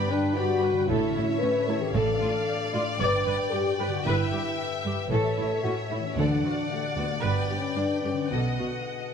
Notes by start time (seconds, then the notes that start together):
Already playing: G2 D3 B3 D5
0.02 D4
0.10 D4 B4 G5
0.20 D5
0.36 F#4 G4 C#5 D5 B5
0.64 B4 G5
0.72 D3
0.88 A1 A2 E4 A4 C#5 E5
1.07 C#4
1.16 A2 E4
1.24 A4
1.40 A2 C#4 G4 B4
1.59 A4
1.68 A2 E4 A4
1.77 E3 G4
1.94 A1 A2 A4 D5 F5
2.11 D4
2.21 A2 F4
2.30 A4
2.47 G4
2.65 A4
2.73 A2 F4 D5
2.82 A3
2.99 G1 G2 B4 D5 G5
3.17 D4
3.26 G2 B4
3.34 D5
3.52 G2 G4 C#6
3.70 D5
3.78 G2 G4 B4
3.87 D3
3.92 F#4
4.05 G1 G2 E4 B4 E5
4.23 E4
4.32 G2 G4
4.41 B4
4.57 A4
4.75 B4
4.85 G2 G4
4.93 G3
5.10 A1 A2 A4 C#5 E5
5.28 E4
5.38 A2 E4
5.46 A4
5.63 A2 C#4 F#4 G4
5.81 A4
5.91 A2 E4
5.99 E3
6.04 C#4
6.16 D2 D3 D4 A4 D5 F#5
6.34 F#4
6.43 D2 F#4
6.53 A4
6.71 A3 G4
6.88 A4
6.96 D2 B3 F#4
7.05 A3
7.10 A3
7.22 G1 G2 B3 B4 G5
7.41 G4
7.49 G2 G4
7.58 C#4 B4
7.76 G2 D4 A4
7.94 B4
8.02 G2 C#4 G4
8.13 D3
8.31 B1 B2 B3 A4 D#5 F#5
8.50 F#4
8.58 B2 F#4
8.68 A4
8.86 G#4
9.05 A4